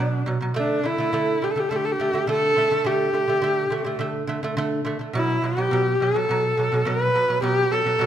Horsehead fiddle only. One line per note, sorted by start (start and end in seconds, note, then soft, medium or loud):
0.00 0.25 D4 medium
0.57 0.87 D4 medium
0.85 1.45 E4 medium
1.44 1.53 G4 medium
1.51 1.61 A4 medium
1.59 1.71 G4 medium
1.69 1.77 A4 medium
1.76 1.86 G4 medium
1.85 1.93 A4 medium
1.92 2.28 G4 medium
2.30 2.87 A4 loud
2.86 4.00 G4 loud
5.16 5.46 E4 medium
5.45 6.03 G4 medium
6.02 6.88 A4 medium
6.87 7.42 B4 loud
7.43 7.73 G4 loud
7.71 8.06 A4 medium